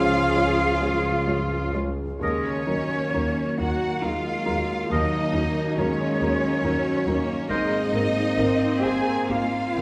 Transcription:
0.00 1.98 C#2 medium
0.00 2.25 C#2 medium
0.00 2.27 C#3 medium
0.00 0.21 F3 medium
0.00 1.84 F3 loud
0.00 0.32 G#3 soft
0.00 1.75 G#3 medium
0.00 1.85 C#4 loud
0.00 3.80 C#4 soft
0.00 0.31 F4 soft
0.00 0.35 F4 medium
0.00 1.71 F4 medium
0.00 0.80 G#4 medium
0.00 1.75 G#4 medium
0.00 1.85 G#4 medium
0.00 0.32 C#5 soft
0.00 1.72 F5 medium
0.00 1.75 F5 medium
0.00 1.85 F5 medium
0.36 0.78 G#3 soft
0.36 1.27 F4 soft
0.36 0.78 F4 soft
0.36 0.78 C#5 soft
0.81 1.24 G#3 soft
0.81 1.24 F4 soft
0.81 2.25 G#4 medium
0.81 1.24 C#5 soft
1.26 1.70 G#3 soft
1.26 1.70 F4 soft
1.26 2.26 F4 soft
1.26 1.71 C#5 soft
1.74 2.18 G#3 soft
1.74 2.26 G#3 soft
1.74 2.18 F4 soft
1.74 2.18 C#5 soft
2.19 2.65 D#2 soft
2.19 4.92 D#3 soft
2.19 7.46 F#3 medium
2.19 2.65 G#3 medium
2.19 7.46 A#3 medium
2.19 3.55 C#4 medium
2.19 2.57 A#4 medium
2.19 3.54 C#5 medium
2.19 3.60 C#5 medium
2.19 2.58 D#5 medium
2.24 2.32 D#2 medium
2.67 2.77 D#2 medium
2.67 3.09 F#3 soft
2.67 4.04 A#3 medium
2.67 3.09 D#4 soft
2.67 5.36 D#4 soft
2.67 3.09 A#4 soft
3.13 3.23 D#2 medium
3.13 3.54 F#3 soft
3.13 7.03 F#3 soft
3.13 3.54 D#4 soft
3.13 3.55 A#4 soft
3.58 3.68 D#2 medium
3.58 3.99 F#3 soft
3.58 3.99 D#4 soft
3.58 4.03 F#4 medium
3.58 3.99 A#4 soft
3.58 6.22 A#4 soft
3.58 4.06 F#5 medium
3.58 4.03 F#5 medium
3.58 4.04 F#5 medium
4.02 4.12 D#2 medium
4.02 4.43 F#3 soft
4.02 4.92 G#3 medium
4.02 4.43 D#4 soft
4.02 4.91 F4 medium
4.02 4.43 A#4 soft
4.02 4.91 F5 medium
4.02 4.92 F5 medium
4.02 4.91 F5 medium
4.46 4.57 D#2 soft
4.46 4.86 F#3 soft
4.46 7.09 A#3 soft
4.46 4.86 D#4 soft
4.46 4.86 A#4 soft
4.90 5.33 D#2 medium
4.90 5.00 D#2 medium
4.90 7.55 D#3 medium
4.90 5.34 F#3 medium
4.90 5.76 D#4 medium
4.90 5.24 A#4 medium
4.90 5.76 D#5 medium
4.90 5.24 D#5 medium
4.90 5.80 D#5 medium
4.90 5.79 D#5 medium
5.34 5.43 D#2 medium
5.34 5.74 F#3 soft
5.34 5.78 A#3 medium
5.34 5.74 D#4 soft
5.34 8.38 D#4 soft
5.34 5.74 A#4 soft
5.78 5.86 D#2 medium
5.78 6.17 F#3 soft
5.78 6.65 G#3 medium
5.78 7.50 C#4 medium
5.78 6.17 D#4 soft
5.78 6.65 F#4 soft
5.78 6.18 A#4 soft
5.78 7.47 C#5 medium
5.78 7.21 C#5 medium
5.78 7.47 C#5 medium
6.21 6.29 D#2 medium
6.21 6.61 F#3 soft
6.21 6.61 D#4 soft
6.21 6.61 A#4 soft
6.21 8.83 A#4 medium
6.63 6.71 D#2 medium
6.63 7.07 F#3 medium
6.63 7.03 F#3 soft
6.63 7.03 D#4 soft
6.63 7.54 F#4 soft
6.63 7.03 A#4 soft
7.07 7.15 D#2 medium
7.07 7.46 F#3 soft
7.07 7.50 A#3 medium
7.07 9.82 A#3 medium
7.07 7.46 D#4 soft
7.07 7.46 A#4 soft
7.49 7.59 G#1 medium
7.49 7.92 G#2 medium
7.49 9.82 G#2 medium
7.49 8.38 G#3 medium
7.49 9.82 A#3 medium
7.49 9.82 C4 medium
7.49 8.80 D#4 medium
7.49 7.82 A#4 medium
7.49 7.82 C5 medium
7.49 8.83 D#5 medium
7.49 8.80 D#5 medium
7.49 8.85 D#5 medium
7.93 8.01 G#1 medium
7.93 8.34 A#3 soft
7.93 8.34 C4 soft
7.93 9.82 C4 soft
7.93 8.34 A#4 medium
8.38 8.46 G#1 medium
8.38 8.79 A#3 soft
8.38 8.79 C4 soft
8.38 9.28 C4 medium
8.38 9.28 D#4 soft
8.38 8.79 A#4 soft
8.83 8.92 G#1 medium
8.83 9.25 A#3 soft
8.83 9.25 C4 soft
8.83 9.29 G#4 medium
8.83 9.25 A#4 soft
8.83 9.28 G#5 medium
8.83 9.29 G#5 medium
9.29 9.38 G#1 medium
9.29 9.75 A#3 medium
9.29 9.72 A#3 soft
9.29 9.72 C4 soft
9.29 9.82 D#4 soft
9.29 9.82 F4 medium
9.29 9.72 A#4 soft
9.29 9.82 F5 medium
9.75 9.82 G#1 soft
9.75 9.82 D#3 soft
9.75 9.82 A#3 soft
9.75 9.82 C4 medium
9.75 9.82 C4 soft
9.75 9.82 A#4 soft

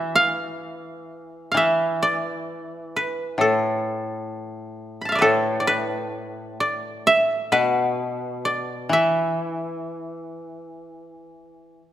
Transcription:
0.00 1.53 E3 soft
0.00 0.84 D5 medium
0.00 0.21 E5 medium
0.15 1.51 F5 medium
1.52 4.31 E3 soft
1.52 1.63 F5 medium
1.57 3.06 E5 medium
2.03 3.63 D5 medium
2.96 4.74 B4 medium
3.38 5.20 A2 soft
3.38 5.21 A4 medium
5.01 6.31 A5 soft
5.01 6.19 B5 soft
5.09 6.61 E5 soft
5.09 6.53 F5 soft
5.15 5.67 B4 soft
5.15 5.60 D5 soft
5.21 7.52 A2 soft
5.21 7.12 A4 medium
5.60 6.60 D5 soft
5.67 7.45 B4 medium
6.60 8.20 D5 medium
7.07 8.56 E5 medium
7.52 8.91 B2 medium
7.52 9.30 B4 medium
8.45 10.05 D5 medium
8.89 11.80 E3 medium
8.89 11.77 E5 medium

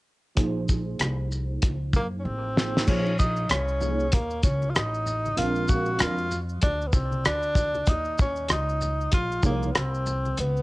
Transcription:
0.35 0.97 A#1 medium
0.35 2.51 F3 medium
0.35 2.52 A#3 medium
0.35 2.52 D#4 medium
0.35 2.52 G#4 medium
0.35 2.52 C5 medium
0.35 kick medium
0.35 closed hi-hat medium
0.69 kick medium
0.69 shaker soft
0.99 1.60 C2 medium
0.99 cross-stick medium
0.99 closed hi-hat medium
1.32 shaker soft
1.62 1.92 C#2 medium
1.62 kick medium
1.62 closed hi-hat medium
1.93 2.23 F#2 medium
1.93 2.07 A#3 medium
1.93 kick medium
1.93 shaker soft
2.19 2.26 C#4 medium
2.25 2.84 A1 medium
2.25 2.89 C4 loud
2.56 2.85 F3 medium
2.56 2.85 A#3 soft
2.56 2.86 D#4 soft
2.56 2.86 G#4 soft
2.56 2.87 C5 medium
2.56 snare medium
2.77 snare medium
2.87 3.47 A#1 loud
2.87 3.11 F3 medium
2.87 3.11 A#3 medium
2.87 3.18 C#4 loud
2.87 3.11 D#4 medium
2.87 3.11 G#4 medium
2.87 3.12 C5 medium
2.87 kick medium
2.87 crash medium
2.87 maracas medium
3.06 maracas soft
3.18 3.52 D#4 loud
3.18 kick medium
3.18 maracas soft
3.18 shaker soft
3.36 maracas soft
3.49 4.10 C2 medium
3.49 4.15 C#4 loud
3.49 cross-stick medium
3.49 closed hi-hat medium
3.49 high conga soft
3.49 low conga medium
3.49 maracas medium
3.68 maracas soft
3.81 4.05 F3 medium
3.81 4.05 A#3 medium
3.81 4.05 D#4 medium
3.81 4.06 G#4 medium
3.81 4.06 C#5 medium
3.81 low conga medium
3.81 maracas soft
3.81 shaker soft
4.00 maracas soft
4.12 4.43 D#2 medium
4.12 4.43 A#3 loud
4.12 kick medium
4.12 closed hi-hat medium
4.12 maracas medium
4.30 maracas soft
4.43 4.73 C#2 medium
4.43 4.71 C#4 medium
4.43 kick medium
4.43 closed hi-hat medium
4.43 shaker medium
4.43 maracas soft
4.62 high conga medium
4.62 maracas soft
4.70 4.77 F4 medium
4.75 5.35 A1 medium
4.75 5.40 D#4 loud
4.75 cross-stick loud
4.75 closed hi-hat medium
4.75 maracas medium
4.94 maracas soft
5.06 low conga medium
5.06 maracas soft
5.06 shaker soft
5.25 high conga medium
5.25 maracas soft
5.36 6.02 A#1 medium
5.36 6.26 G#3 medium
5.36 6.26 C4 medium
5.36 6.26 D4 medium
5.36 5.71 F4 loud
5.36 6.27 A#4 medium
5.36 6.26 F5 medium
5.36 closed hi-hat medium
5.36 maracas medium
5.56 maracas soft
5.67 6.03 F#4 loud
5.67 kick medium
5.67 maracas soft
5.67 shaker medium
5.86 maracas soft
5.99 6.60 F2 medium
5.99 6.37 F4 loud
5.99 cross-stick medium
5.99 closed hi-hat medium
5.99 high conga soft
5.99 low conga medium
5.99 maracas medium
6.18 maracas soft
6.31 low conga medium
6.31 maracas soft
6.31 shaker soft
6.49 maracas soft
6.61 6.92 D2 medium
6.61 6.88 D4 loud
6.61 kick medium
6.61 closed hi-hat medium
6.61 maracas medium
6.81 maracas soft
6.87 6.95 B3 medium
6.93 7.23 C2 medium
6.93 7.25 C4 medium
6.93 kick medium
6.93 shaker medium
6.93 maracas soft
7.12 high conga medium
7.12 maracas soft
7.25 7.85 D2 medium
7.25 7.91 D4 loud
7.25 cross-stick loud
7.25 closed hi-hat medium
7.25 maracas medium
7.43 maracas soft
7.55 kick medium
7.55 low conga medium
7.55 maracas soft
7.55 shaker medium
7.74 high conga medium
7.74 maracas soft
7.86 8.47 D#2 loud
7.86 8.20 D#4 loud
7.86 kick medium
7.86 closed hi-hat medium
7.86 maracas medium
8.05 maracas soft
8.18 8.49 C#4 medium
8.18 kick medium
8.18 maracas soft
8.18 shaker medium
8.36 maracas soft
8.48 9.10 C#2 medium
8.48 9.10 D#4 loud
8.48 cross-stick medium
8.48 closed hi-hat medium
8.48 high conga soft
8.48 low conga medium
8.48 maracas medium
8.69 maracas soft
8.81 low conga medium
8.81 shaker soft
8.81 maracas soft
9.01 maracas soft
9.12 9.42 A#1 medium
9.12 9.42 F4 loud
9.12 kick medium
9.12 closed hi-hat medium
9.12 maracas medium
9.32 maracas soft
9.43 9.73 C2 medium
9.43 9.67 F3 medium
9.43 9.68 A#3 medium
9.43 9.73 A#3 medium
9.43 9.68 D#4 medium
9.43 9.68 G#4 medium
9.43 9.68 C#5 medium
9.43 kick medium
9.43 shaker medium
9.43 maracas soft
9.63 high conga medium
9.63 maracas soft
9.71 9.78 B3 medium
9.71 closed hi-hat medium
9.76 10.35 C2 medium
9.76 10.38 C4 loud
9.76 cross-stick loud
9.76 maracas medium
9.95 maracas soft
10.06 low conga medium
10.06 maracas soft
10.06 shaker soft
10.25 high conga medium
10.25 maracas soft
10.37 10.62 C#2 medium
10.37 10.62 B3 loud
10.37 closed hi-hat medium
10.37 maracas medium
10.57 maracas soft

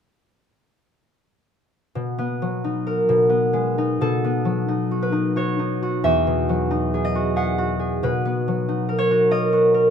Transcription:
1.95 2.99 B2 soft
2.19 3.28 B3 soft
2.42 2.99 F#3 soft
2.64 3.77 D#4 soft
2.87 4.05 A#4 soft
3.09 4.00 B2 soft
3.29 4.23 B3 soft
3.53 4.04 G#3 soft
3.78 4.67 D#4 soft
4.01 6.07 B2 soft
4.01 5.74 A4 medium
4.24 8.14 B3 soft
4.45 6.48 F#3 soft
4.68 5.11 D#4 soft
4.91 5.35 F#4 soft
5.02 8.02 B4 soft
5.12 5.58 D#4 soft
5.36 5.81 F#4 soft
5.36 6.07 C#5 soft
5.59 6.69 D#4 soft
5.83 7.14 F#4 soft
6.04 8.05 E2 soft
6.04 8.05 E5 medium
6.27 8.02 B2 soft
6.49 8.47 F#3 soft
6.71 8.67 D#4 soft
6.94 7.35 G#4 soft
7.05 9.30 D#5 medium
7.15 7.57 F#4 soft
7.36 7.78 G#4 soft
7.36 9.90 F#5 medium
7.58 9.10 F#4 soft
7.79 8.05 G#4 soft
8.03 9.90 B2 soft
8.03 9.90 B4 medium
8.25 9.90 B3 soft
8.48 9.90 F#3 soft
8.69 9.90 D#4 soft
8.89 9.30 A#4 soft
8.99 9.90 C#5 medium
9.11 9.52 F#4 soft
9.31 9.73 A#4 soft
9.31 9.90 D#5 medium
9.53 9.90 F#4 soft
9.74 9.90 A#4 soft

